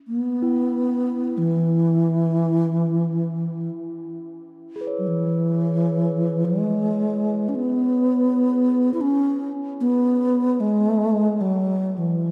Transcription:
0.08 B3
0.42 E4
1.38 E3
4.76 G#4
4.81 B4
4.87 C#5
4.99 F#3
5.07 E3
6.45 G#3
7.49 C#4
7.55 B3
8.94 E4
9.01 C#4
9.80 B3
10.60 G#3
11.41 F#3
11.98 E3

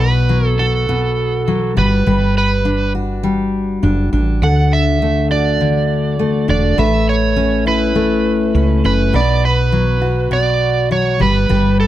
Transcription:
Already playing: B1 B2 B4
0.00 B4
0.29 F#3
0.47 A4
0.59 F#4 A4
0.89 B2
1.48 F#3
1.77 G1 G3 B4
2.07 G1 G3 B4
2.38 B4
2.65 D4
2.95 F#4
3.23 G3
3.83 F#1 D4
4.13 A1 D4
4.42 D2 D3 A4 F#5
4.73 E5
5.02 A3
5.31 F#4 D5
5.61 D3
6.19 A3
6.48 E1 D4 D5
6.78 A1 A3 B4 E5
7.09 C#5
7.36 C#4
7.66 E4 B4
7.95 A3
8.55 C#2 C#4
8.84 F#1 C#4 B4
9.13 B1 B2 B4 D5
9.45 B4
9.72 F#3
10.01 F#4
10.31 B2 D5
10.91 F#3 C#5
11.20 G1 G3 B4
11.49 G1 G3 B4
11.80 A4

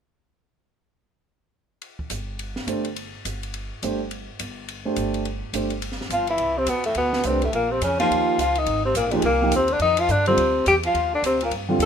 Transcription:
1.82 ride
1.99 kick
2.10 G1, hi-hat pedal, ride
2.39 ride
2.56 snare
2.67 G1 A3 D4 G4 C5, hi-hat pedal, ride
2.85 ride
2.96 ride
3.25 G1, hi-hat pedal, ride
3.43 ride
3.54 ride
3.82 G1 A3 D4 G4 C5, hi-hat pedal, ride
4.11 ride
4.39 G1, hi-hat pedal, ride
4.68 ride
4.85 A3 D4 G4 C5
4.96 G1, hi-hat pedal, ride
5.14 ride
5.25 ride
5.53 G1 A3 D4 G4 C5, hi-hat pedal, ride
5.70 ride
5.82 ride
5.92 snare
6.01 snare
6.09 G1 F3 F4, hi-hat pedal, ride
6.27 E3 E4, ride
6.37 C2, ride
6.57 C3 C4
6.66 E2 B2 B3, hi-hat pedal, ride
6.84 A2 A3, ride
6.95 D2 B2 B3, ride
7.13 snare
7.23 C2 C3 A3 C4 D4 B4, hi-hat pedal, ride
7.27 G4
7.42 A2 A3, ride
7.53 A#1 A#2 A#3, ride
7.70 C3 C4
7.81 F2 C#3 C#4, hi-hat pedal, ride
7.99 F3 A#3 D#4 F4 G4, ride
8.10 D#2, ride
8.38 C#2 F3 F4, hi-hat pedal, ride
8.55 D#3 D#4, ride
8.66 G#1, ride
8.85 C3 C4
8.94 A#1 A#2 A#3, hi-hat pedal, ride
9.07 G2 G3
9.11 G#2 F3 A#3 D#4 G4, ride
9.16 G#3
9.22 C2 A#2 A#3, ride
9.41 F3 A#3 D#4 G4
9.51 D#2 C3, hi-hat pedal, ride
9.56 C4
9.68 D3, ride
9.73 D4
9.79 F2 D#3 D#4, ride
9.97 F3 F4, ride
10.08 G2 D3 D4, hi-hat pedal
10.26 C3 D3 G3 C4 F4, ride
10.37 D2, ride
10.66 E2 G3 G4, hi-hat pedal, ride
10.83 F3 F4, ride
10.94 D#2, ride
11.13 D3 D4
11.22 D2 C3 C4, hi-hat pedal, ride
11.41 A#2, ride
11.45 A#3
11.51 G2, ride
11.69 D3 G3 C4 F4
11.79 D#2 A3, hi-hat pedal, ride

